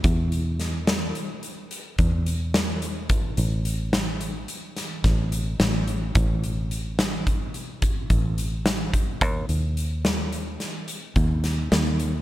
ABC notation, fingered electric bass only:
X:1
M:11/8
L:1/8
Q:1/4=108
K:Amix
V:1 name="Fingered electric bass" clef=bass
E,,4 z3 E,,4 | A,,, A,,,4 z2 A,,,2 A,,,2 | A,,,4 z3 A,,,4 | ^D,, D,,4 z2 D,,2 D,,2 |]